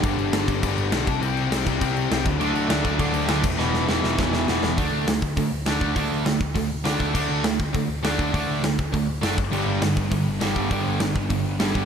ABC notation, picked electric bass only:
X:1
M:4/4
L:1/8
Q:1/4=202
K:Dmix
V:1 name="Picked electric bass" clef=bass
G,,, G,,, G,,, G,,, G,,, G,,, B,,, C,, | C,,2 C,, C,, C,,2 C,, D,, | D,, D,, D,, D,, D,, D,, D,, E,,, | E,,,2 E,,, E,,, E,,,2 E,,, E,,, |
D,, D,, D,, D,, D, D,, D,,2 | D,, D,, D,, D,, D,,2 D,, D,, | D,, D,, D,, D,, D, D,, D,,2 | D,, D,, D,, D,, D,,2 F,,, G,,, |
G,,, G,,, G,,, G,,, G,, G,,, G,,,2 | G,,, G,,, G,,, G,,, G,,,2 G,,, G,,, |]